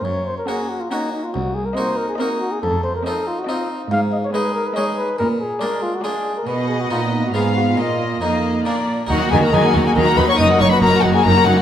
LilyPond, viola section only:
\new Staff \with { instrumentName = "Viola section" } { \time 3/4 \key f \phrygian \tempo 4 = 140 r4 des'8. r16 des'8. r16 | r4 c'8. r16 c'8. r16 | r4 c'8. r16 c'8. r16 | \key ees \minor r4 aes8. r16 aes8. r16 |
r4 aes8. r16 aes8. r16 | b2 ces'4 | bes4 bes4 bes8 r8 | ges16 bes16 ges16 bes16 ges16 bes16 ges16 bes16 ges16 bes16 ges16 bes16 |
ges16 bes16 ges16 bes16 ges16 bes16 ges16 bes16 ges16 bes16 ges16 bes16 | }